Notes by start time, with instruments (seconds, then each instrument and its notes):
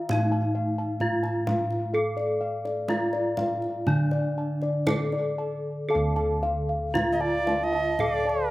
0.09 kettle gongs A2 F5, bronze metallophone D#4, kendang low
0.32 kettle gongs A5
0.55 kettle gongs F5
0.78 kettle gongs A5
1.00 kettle gongs D#4 F5, bronze metallophone F4, kendang low
1.23 kettle gongs A5, kendang slap
1.47 kettle gongs F5, kendang high, kendang low
1.71 kendang slap
1.93 kettle gongs A4 F5, bronze metallophone A4
2.17 kettle gongs D5, kendang slap
2.41 kettle gongs F5
2.65 kettle gongs D5, kendang slap
2.88 kettle gongs D#4 F5, bronze metallophone F4, kendang high
3.13 kettle gongs D5, kendang slap
3.37 kettle gongs F5, kendang high, kendang low
3.62 kendang slap
3.87 kettle gongs D3 A5, bronze metallophone D4, kendang low
4.11 kettle gongs D5, kendang slap
4.38 kettle gongs A5
4.62 kettle gongs D5, kendang slap
4.86 kettle gongs D#4 A5, bronze metallophone A4, kendang high, kendang low
5.12 kettle gongs D5, kendang slap
5.38 kettle gongs A5
5.89 bronze metallophone A4 A5, kettle gongs A4 F5
5.95 kettle gongs D2
6.16 bronze metallophone A5, kettle gongs A5, kendang slap
6.43 kettle gongs F5, bronze metallophone F5, kendang slap
6.69 bronze metallophone F5
6.94 kettle gongs D#4 F5, bronze metallophone F4 F5, kendang high, kendang low
7.12 recorder D#5
7.20 recorder D5, bronze metallophone F5, kettle gongs A5
7.47 kettle gongs F5, bronze metallophone A5, kendang slap, kendang high
7.63 recorder D#5
7.73 kettle gongs A5, bronze metallophone A5, kendang slap
7.99 bronze metallophone A4 A5, kettle gongs F5, kendang low
8.06 recorder D5
8.25 recorder A#4, kettle gongs D5, bronze metallophone A5